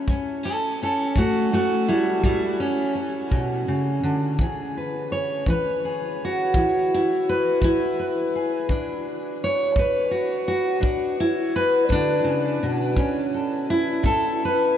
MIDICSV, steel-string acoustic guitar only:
0, 0, Header, 1, 2, 480
1, 0, Start_track
1, 0, Key_signature, 3, "major"
1, 0, Tempo, 715990
1, 54, Time_signature, 12, 3, 24, 8
1, 9905, End_track
2, 0, Start_track
2, 0, Title_t, "Steel-string acoustic guitar"
2, 0, Program_c, 0, 25
2, 0, Note_on_c, 0, 64, 46
2, 0, Note_on_c, 0, 69, 95
2, 61, Note_on_c, 0, 45, 73
2, 68, Note_on_c, 0, 61, 48
2, 281, Note_off_c, 0, 61, 0
2, 289, Note_off_c, 0, 64, 0
2, 289, Note_on_c, 0, 61, 81
2, 292, Note_off_c, 0, 69, 0
2, 304, Note_on_c, 0, 69, 91
2, 491, Note_off_c, 0, 45, 0
2, 533, Note_off_c, 0, 61, 0
2, 540, Note_off_c, 0, 69, 0
2, 554, Note_on_c, 0, 61, 72
2, 560, Note_on_c, 0, 69, 80
2, 782, Note_on_c, 0, 45, 70
2, 783, Note_on_c, 0, 57, 78
2, 786, Note_off_c, 0, 61, 0
2, 787, Note_off_c, 0, 69, 0
2, 791, Note_on_c, 0, 66, 92
2, 1020, Note_off_c, 0, 57, 0
2, 1025, Note_off_c, 0, 66, 0
2, 1027, Note_on_c, 0, 57, 69
2, 1034, Note_on_c, 0, 66, 88
2, 1213, Note_off_c, 0, 45, 0
2, 1263, Note_off_c, 0, 57, 0
2, 1263, Note_on_c, 0, 64, 83
2, 1267, Note_on_c, 0, 55, 67
2, 1498, Note_off_c, 0, 55, 0
2, 1498, Note_off_c, 0, 64, 0
2, 1499, Note_on_c, 0, 45, 70
2, 1505, Note_on_c, 0, 55, 77
2, 1508, Note_on_c, 0, 64, 81
2, 1739, Note_off_c, 0, 64, 0
2, 1742, Note_off_c, 0, 55, 0
2, 1742, Note_on_c, 0, 61, 81
2, 1747, Note_off_c, 0, 66, 0
2, 1932, Note_off_c, 0, 45, 0
2, 1970, Note_off_c, 0, 61, 0
2, 1978, Note_on_c, 0, 61, 43
2, 2218, Note_on_c, 0, 47, 59
2, 2459, Note_off_c, 0, 47, 0
2, 2468, Note_on_c, 0, 49, 66
2, 2702, Note_off_c, 0, 49, 0
2, 2704, Note_on_c, 0, 50, 65
2, 2911, Note_off_c, 0, 61, 0
2, 2943, Note_off_c, 0, 50, 0
2, 2956, Note_on_c, 0, 52, 71
2, 2961, Note_on_c, 0, 68, 45
2, 3200, Note_on_c, 0, 71, 46
2, 3381, Note_off_c, 0, 52, 0
2, 3429, Note_off_c, 0, 71, 0
2, 3432, Note_on_c, 0, 73, 77
2, 3667, Note_off_c, 0, 73, 0
2, 3675, Note_on_c, 0, 52, 75
2, 3685, Note_on_c, 0, 71, 76
2, 3911, Note_off_c, 0, 68, 0
2, 3921, Note_on_c, 0, 68, 44
2, 4101, Note_off_c, 0, 52, 0
2, 4154, Note_off_c, 0, 71, 0
2, 4187, Note_on_c, 0, 66, 80
2, 4387, Note_on_c, 0, 52, 67
2, 4390, Note_on_c, 0, 64, 48
2, 4625, Note_off_c, 0, 64, 0
2, 4655, Note_on_c, 0, 64, 81
2, 4817, Note_off_c, 0, 52, 0
2, 4885, Note_off_c, 0, 66, 0
2, 4890, Note_on_c, 0, 71, 78
2, 5113, Note_on_c, 0, 52, 65
2, 5114, Note_off_c, 0, 64, 0
2, 5123, Note_on_c, 0, 64, 89
2, 5352, Note_off_c, 0, 71, 0
2, 5360, Note_on_c, 0, 71, 48
2, 5540, Note_off_c, 0, 52, 0
2, 5592, Note_off_c, 0, 68, 0
2, 5601, Note_on_c, 0, 68, 48
2, 5802, Note_off_c, 0, 71, 0
2, 5803, Note_off_c, 0, 68, 0
2, 5825, Note_on_c, 0, 50, 72
2, 5832, Note_off_c, 0, 64, 0
2, 5835, Note_on_c, 0, 62, 50
2, 6255, Note_off_c, 0, 50, 0
2, 6328, Note_on_c, 0, 73, 85
2, 6540, Note_on_c, 0, 50, 75
2, 6555, Note_off_c, 0, 73, 0
2, 6563, Note_on_c, 0, 71, 85
2, 6779, Note_on_c, 0, 66, 46
2, 6973, Note_off_c, 0, 50, 0
2, 7016, Note_off_c, 0, 66, 0
2, 7022, Note_off_c, 0, 71, 0
2, 7024, Note_on_c, 0, 66, 81
2, 7238, Note_off_c, 0, 62, 0
2, 7242, Note_on_c, 0, 50, 71
2, 7246, Note_on_c, 0, 62, 48
2, 7494, Note_off_c, 0, 62, 0
2, 7510, Note_on_c, 0, 64, 80
2, 7684, Note_off_c, 0, 50, 0
2, 7743, Note_off_c, 0, 66, 0
2, 7749, Note_on_c, 0, 71, 94
2, 7970, Note_on_c, 0, 50, 64
2, 7986, Note_off_c, 0, 64, 0
2, 7992, Note_on_c, 0, 62, 95
2, 8204, Note_off_c, 0, 50, 0
2, 8207, Note_on_c, 0, 49, 66
2, 8454, Note_off_c, 0, 49, 0
2, 8465, Note_off_c, 0, 71, 0
2, 8466, Note_on_c, 0, 47, 64
2, 8695, Note_on_c, 0, 45, 68
2, 8696, Note_off_c, 0, 62, 0
2, 8699, Note_on_c, 0, 61, 52
2, 8703, Note_off_c, 0, 47, 0
2, 8945, Note_on_c, 0, 69, 45
2, 9129, Note_off_c, 0, 45, 0
2, 9185, Note_on_c, 0, 64, 97
2, 9407, Note_on_c, 0, 45, 79
2, 9415, Note_off_c, 0, 69, 0
2, 9423, Note_on_c, 0, 69, 99
2, 9661, Note_off_c, 0, 69, 0
2, 9687, Note_on_c, 0, 71, 77
2, 9845, Note_off_c, 0, 45, 0
2, 9902, Note_off_c, 0, 64, 0
2, 9905, Note_off_c, 0, 61, 0
2, 9905, Note_off_c, 0, 71, 0
2, 9905, End_track
0, 0, End_of_file